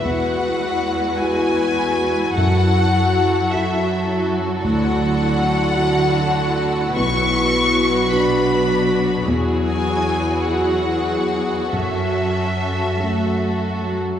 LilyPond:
<<
  \new Staff \with { instrumentName = "Violin section" } { \time 6/8 \key e \mixolydian \tempo 4. = 52 fis''4. gis''4. | fis''4. e''4 r8 | fis''2. | cis'''4. b''4. |
r8 gis''4 fis''4. | e''2~ e''8 r8 | }
  \new Staff \with { instrumentName = "Violin section" } { \time 6/8 \key e \mixolydian << { b'2. | a'2.~ | a'2. | b'2. |
gis'2. | a'2~ a'8. r16 | } \\ { fis'2.~ | fis'2. | fis'2.~ | fis'2. |
fis'2.~ | fis'2~ fis'8. r16 | } >> }
  \new Staff \with { instrumentName = "Grand piano" } { \time 6/8 \key e \mixolydian e,4. <e' fis'>4. | fis,4. <e' fis'>4. | d,4. <e' fis'>4. | b,,4. <d' fis'>4. |
e,4. <e' fis'>4. | fis,4. <cis' fis'>4. | }
  \new Staff \with { instrumentName = "Viola section" } { \time 6/8 \key e \mixolydian << { e'2.~ | e'2. | e'2.~ | e'4. d'4. |
e'2. | cis'4. a8 a8 fis8 | } \\ { gis2. | fis2.~ | fis2. | fis2.~ |
fis2. | fis4. r4. | } >> }
  \new Staff \with { instrumentName = "Cello section" } { \clef bass \time 6/8 \key e \mixolydian e,2. | fis,2. | d2. | b,2. |
e,2. | fis,2~ fis,8. r16 | }
>>